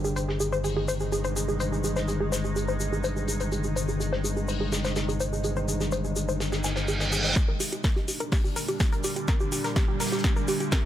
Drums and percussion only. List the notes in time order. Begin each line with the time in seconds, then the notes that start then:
0.04 shaker
0.16 shaker
0.29 snare
0.40 shaker
0.53 shaker
0.64 open hi-hat, shaker
0.88 shaker
1.00 shaker
1.12 shaker
1.24 closed hi-hat, shaker
1.36 shaker
1.48 shaker
1.60 shaker
1.73 shaker
1.84 shaker
1.96 snare, shaker
2.08 shaker
2.32 snare, shaker
2.45 shaker
2.56 shaker
2.68 shaker
2.80 shaker
2.93 shaker
3.04 shaker
3.17 shaker
3.28 shaker
3.40 closed hi-hat, shaker
3.52 shaker
3.63 shaker
3.76 shaker
3.88 shaker
4.01 shaker
4.13 snare
4.24 shaker
4.37 shaker
4.48 open hi-hat, shaker
4.72 snare, shaker
4.84 snare, shaker
4.96 snare, shaker
5.09 closed hi-hat, shaker
5.20 shaker
5.33 shaker
5.44 shaker
5.56 shaker
5.68 shaker
5.80 snare, shaker
5.92 shaker
6.04 shaker
6.16 shaker
6.29 shaker
6.40 snare, shaker
6.52 snare, shaker
6.64 snare, shaker
6.76 snare, shaker
6.87 shaker
7.00 snare, shaker
7.11 closed hi-hat, shaker
7.24 shaker
7.36 kick, snare, closed hi-hat, shaker
7.60 open hi-hat, shaker
7.72 closed hi-hat, shaker
7.84 kick, snare, closed hi-hat, shaker
7.96 snare
8.08 open hi-hat, shaker
8.20 closed hi-hat, shaker
8.32 kick, snare, closed hi-hat, open hi-hat, shaker
8.45 shaker
8.56 open hi-hat, shaker
8.68 closed hi-hat, shaker
8.80 kick, snare, closed hi-hat, shaker
8.92 closed hi-hat, shaker
9.03 open hi-hat, shaker
9.16 closed hi-hat, shaker
9.28 kick, snare, closed hi-hat, shaker
9.40 shaker
9.52 open hi-hat, shaker
9.64 snare, closed hi-hat, shaker
9.76 kick, snare, closed hi-hat, shaker
10.00 snare, open hi-hat, shaker
10.07 snare, shaker
10.12 snare, closed hi-hat, shaker
10.18 snare, shaker
10.24 kick, snare, closed hi-hat, shaker
10.36 shaker
10.48 open hi-hat, shaker
10.60 closed hi-hat, shaker
10.72 kick, snare, closed hi-hat, shaker